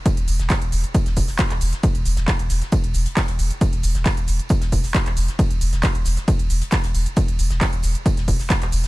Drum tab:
RD |x---x---x---x---|x---x---x---x---|x---x---x---x---|x---x---x---x---|
HH |xxoxxxoxxxooxxox|xxoxxxoxxxoxxxox|xxoxxxoxxxooxxox|xxoxxxoxxxoxxxox|
TB |x-x-x-x-x-x-x-x-|x-x-x-x-x-x-x-x-|x-x-x-x-x-x-x-x-|x-x-x-x-x-x-x-x-|
SH |xxxxxxxxxxxxxxxx|xxxxxxxxxxxxxxxx|xxxxxxxxxxxxxxxx|xxxxxxxxxxxxxxxx|
CP |----x-------xx--|----x-------x---|----x-------xx--|----x-------x---|
SD |---oo----o-oo--o|---oo-oo----o---|---oo----o-oo--o|---oo-oo----o---|
BD |o---o---o-o-o---|o---o---o---o---|o---o---o-o-o---|o---o---o---o---|

RD |x---x---x---x---|
HH |xxoxxxoxxxooxxox|
TB |x-x-x-x-x-x-x-x-|
SH |xxxxxxxxxxxxxxxx|
CP |----x-------xx--|
SD |---oo----o-oo--o|
BD |o---o---o-o-o---|